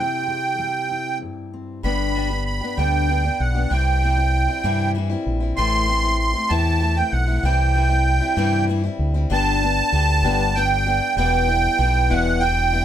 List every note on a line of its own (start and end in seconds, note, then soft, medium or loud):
0.00 1.21 C3 medium
0.00 0.57 G3 medium
0.00 1.52 C4 medium
0.00 0.90 E4 medium
0.00 0.26 G4 medium
0.00 1.18 G5 medium
0.27 3.70 G4 medium
0.58 1.80 G3 medium
0.91 1.80 E4 medium
1.22 3.71 G2 medium
1.54 1.80 C4 medium
1.83 2.60 G1 medium
1.83 2.15 G2 medium
1.83 2.15 D3 medium
1.83 2.13 G3 medium
1.83 2.15 B3 medium
1.83 2.16 D4 medium
1.83 2.16 G4 medium
1.83 2.44 B5 loud
2.14 2.30 G3 medium
2.14 2.30 B3 medium
2.14 2.30 D4 medium
2.14 2.28 G4 medium
2.29 2.63 G3 soft
2.29 2.62 B3 soft
2.29 2.61 D4 soft
2.29 2.59 G4 soft
2.46 2.78 B5 medium
2.61 2.77 G3 soft
2.61 2.78 B3 soft
2.61 2.78 D4 soft
2.61 2.77 G4 soft
2.77 3.28 D2 medium
2.77 3.08 G2 medium
2.77 3.09 D3 medium
2.77 3.07 G3 medium
2.77 3.08 B3 medium
2.77 3.09 D4 medium
2.77 3.09 G4 medium
2.77 3.42 G5 medium
3.08 3.24 G3 medium
3.08 3.24 B3 medium
3.08 3.23 D4 medium
3.08 3.23 G4 medium
3.24 3.56 G3 soft
3.24 3.55 B3 soft
3.24 3.54 D4 soft
3.24 3.53 G4 medium
3.40 3.65 B1 medium
3.40 3.72 F#5 medium
3.54 3.70 G3 soft
3.54 3.71 B3 soft
3.54 3.71 D4 medium
3.54 3.70 G4 medium
3.70 4.47 C2 medium
3.70 4.01 C3 medium
3.70 4.01 E3 medium
3.70 4.02 G3 medium
3.70 4.03 C4 medium
3.70 4.03 E4 medium
3.70 4.91 G5 medium
4.02 4.17 E3 medium
4.02 4.18 G3 medium
4.02 4.18 C4 medium
4.02 4.16 E4 medium
4.17 4.50 G3 soft
4.17 4.48 C4 soft
4.17 4.47 E4 medium
4.48 4.63 G3 soft
4.48 4.64 C4 medium
4.48 4.64 E4 medium
4.63 5.15 G2 medium
4.63 4.95 C3 medium
4.63 4.93 E3 medium
4.63 4.94 G3 medium
4.63 4.95 C4 loud
4.63 4.96 E4 loud
4.95 5.10 E3 medium
4.95 5.11 G3 medium
4.95 5.10 C4 medium
4.95 5.08 E4 medium
5.09 5.42 G3 soft
5.09 5.41 C4 medium
5.09 5.39 E4 medium
5.26 5.52 A#1 medium
5.40 5.58 G3 soft
5.40 5.57 C4 soft
5.40 5.57 E4 medium
5.56 6.34 A1 loud
5.56 5.88 A2 medium
5.56 5.86 E3 medium
5.56 5.87 A3 medium
5.56 5.88 C4 medium
5.56 5.89 E4 medium
5.56 6.18 C6 loud
5.87 6.03 E3 medium
5.87 6.04 A3 medium
5.87 6.04 C4 medium
5.87 6.02 E4 medium
6.03 6.36 A3 soft
6.03 6.34 C4 soft
6.03 6.32 E4 medium
6.19 6.51 C6 loud
6.33 6.49 A3 soft
6.33 6.49 C4 soft
6.33 6.50 E4 medium
6.49 7.01 E2 medium
6.49 6.81 A2 medium
6.49 6.79 E3 medium
6.49 6.80 A3 medium
6.49 6.81 C4 medium
6.49 6.82 E4 medium
6.49 6.98 A5 loud
6.80 6.97 E3 medium
6.80 6.97 A3 medium
6.80 6.97 C4 medium
6.80 6.95 E4 medium
6.96 7.29 A3 soft
6.96 7.28 C4 medium
6.96 7.13 G5 medium
7.12 7.38 B1 medium
7.12 7.44 F#5 medium
7.27 7.44 A3 soft
7.27 7.44 C4 soft
7.27 7.43 E4 medium
7.43 8.19 C2 loud
7.43 7.75 C3 medium
7.43 7.73 E3 medium
7.43 7.74 G3 medium
7.43 7.75 C4 loud
7.43 7.76 E4 medium
7.43 8.65 G5 medium
7.74 7.90 E3 medium
7.74 7.91 G3 medium
7.74 7.90 C4 medium
7.74 7.88 E4 medium
7.89 8.23 G3 soft
7.89 8.22 C4 medium
7.89 8.20 E4 medium
8.21 8.37 G3 soft
8.21 8.37 C4 medium
8.21 8.37 E4 medium
8.37 8.88 G2 loud
8.37 8.68 C3 medium
8.37 8.66 E3 loud
8.37 8.68 G3 medium
8.37 8.68 C4 loud
8.37 8.69 E4 loud
8.68 8.84 E3 medium
8.68 8.84 G3 medium
8.68 8.84 C4 medium
8.68 8.82 E4 medium
8.83 9.16 G3 soft
8.83 9.14 C4 medium
8.83 9.13 E4 medium
8.99 9.25 D2 medium
9.14 9.30 G3 soft
9.14 9.31 C4 medium
9.14 9.30 E4 medium
9.30 9.81 G1 medium
9.30 9.61 G2 medium
9.30 9.61 D3 medium
9.30 9.62 G3 medium
9.30 9.62 B3 medium
9.30 9.62 D4 medium
9.30 9.61 G4 medium
9.30 10.60 A5 loud
9.62 9.91 G3 soft
9.62 9.92 B3 soft
9.62 9.93 D4 medium
9.62 9.93 G4 medium
9.92 10.24 D2 loud
9.92 10.23 G3 medium
9.92 10.24 B3 medium
9.92 10.23 D4 medium
9.92 10.23 G4 medium
10.23 10.99 G1 loud
10.23 10.56 G2 medium
10.23 10.56 D3 medium
10.23 10.53 G3 medium
10.23 10.55 B3 medium
10.23 10.55 D4 medium
10.23 10.55 G4 medium
10.54 10.86 G3 medium
10.54 10.86 B3 medium
10.54 10.85 D4 medium
10.54 10.84 G4 medium
10.54 11.15 G5 loud
10.86 11.17 G3 soft
10.86 11.17 B3 soft
10.86 11.17 D4 medium
10.86 11.17 G4 medium
11.16 11.67 E1 medium
11.16 11.48 E2 medium
11.16 11.48 B2 medium
11.16 11.48 E3 medium
11.16 11.49 G3 medium
11.16 11.48 B3 medium
11.16 11.47 E4 medium
11.16 12.13 G5 loud
11.48 11.77 E3 soft
11.48 11.79 G3 medium
11.48 11.80 B3 medium
11.48 11.79 E4 medium
11.78 12.12 B1 loud
11.78 12.10 E3 medium
11.78 12.10 G3 medium
11.78 12.09 B3 medium
11.78 12.09 E4 medium
12.10 12.85 E1 loud
12.10 12.42 E2 medium
12.10 12.42 B2 medium
12.10 12.40 E3 medium
12.10 12.41 G3 medium
12.10 12.41 B3 medium
12.10 12.41 E4 medium
12.10 12.42 F#5 loud
12.40 12.72 E3 medium
12.40 12.73 G3 medium
12.40 12.72 B3 medium
12.40 12.71 E4 medium
12.40 12.85 G5 loud
12.72 12.85 E3 soft
12.72 12.85 G3 medium
12.72 12.85 B3 medium
12.72 12.85 E4 medium